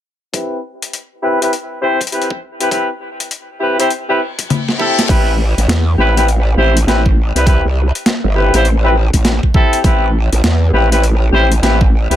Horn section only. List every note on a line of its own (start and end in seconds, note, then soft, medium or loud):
0.33 0.58 C4 medium
0.33 0.58 E4 medium
0.33 0.58 G4 medium
0.33 0.58 B4 loud
1.22 1.38 C4 medium
1.22 1.38 E4 medium
1.22 1.38 G4 medium
1.22 1.38 B4 loud
1.41 1.52 C4 medium
1.41 1.52 E4 medium
1.41 1.52 G4 medium
1.41 1.52 B4 loud
1.82 2.00 C4 medium
1.82 2.00 E4 medium
1.82 2.00 G4 medium
1.82 2.00 C5 loud
2.12 2.30 C4 medium
2.12 2.30 E4 medium
2.12 2.30 G4 medium
2.12 2.30 B4 medium
2.60 2.70 C4 medium
2.60 2.70 E4 medium
2.60 2.70 G4 medium
2.60 2.70 B4 medium
2.71 2.89 C4 medium
2.71 2.89 E4 medium
2.71 2.89 G4 medium
2.71 2.89 B4 loud
3.60 3.76 C4 medium
3.60 3.76 E4 medium
3.60 3.76 G4 medium
3.60 3.76 B4 medium
3.79 3.90 C4 loud
3.79 3.90 E4 medium
3.79 3.90 G4 medium
3.79 3.90 C5 loud
4.09 4.19 C4 medium
4.09 4.19 E4 medium
4.09 4.19 G4 medium
4.09 4.19 B4 loud
4.79 5.03 C4 medium
4.79 5.03 E4 medium
4.79 5.04 G4 medium
4.79 5.03 A4 loud
5.08 5.33 C4 medium
5.08 5.33 E4 medium
5.08 5.33 G4 medium
5.08 5.33 B4 loud
5.98 6.14 C4 loud
5.98 6.14 E4 medium
5.98 6.14 G4 medium
5.98 6.14 B4 loud
6.16 6.27 C4 medium
6.16 6.27 E4 medium
6.16 6.27 G4 medium
6.16 6.27 B4 loud
6.58 6.75 C4 loud
6.58 6.75 E4 medium
6.58 6.75 G4 medium
6.58 6.75 C5 loud
6.87 7.05 C4 medium
6.87 7.05 E4 medium
6.87 7.05 G4 medium
6.87 7.05 B4 loud
7.36 7.45 C4 medium
7.36 7.45 E4 medium
7.36 7.45 G4 medium
7.36 7.45 B4 loud
7.46 7.64 C4 medium
7.46 7.64 E4 medium
7.46 7.64 G4 medium
7.46 7.64 B4 loud
8.36 8.52 C4 medium
8.36 8.52 E4 medium
8.36 8.52 G4 medium
8.36 8.52 B4 medium
8.55 8.65 C4 loud
8.55 8.65 E4 medium
8.55 8.65 G4 medium
8.55 8.65 C5 loud
8.84 8.95 C4 medium
8.84 8.95 E4 medium
8.84 8.95 G4 medium
8.84 8.95 B4 loud
9.55 9.79 C4 loud
9.55 9.79 E4 medium
9.55 9.79 G4 medium
9.55 9.79 A4 loud
9.84 10.09 C4 loud
9.84 10.09 E4 medium
9.84 10.09 G4 medium
9.84 10.09 B4 loud
10.73 10.89 C4 loud
10.73 10.89 E4 medium
10.73 10.89 G4 medium
10.73 10.89 B4 loud
10.92 11.02 C4 medium
10.92 11.02 E4 medium
10.92 11.02 G4 medium
10.92 11.02 B4 loud
11.33 11.50 C4 loud
11.33 11.50 E4 medium
11.33 11.50 G4 medium
11.33 11.50 C5 loud
11.62 11.80 C4 medium
11.62 11.80 E4 medium
11.62 11.80 G4 medium
11.62 11.80 B4 medium
12.10 12.16 C4 medium
12.10 12.16 E4 medium
12.10 12.16 G4 medium
12.10 12.16 B4 medium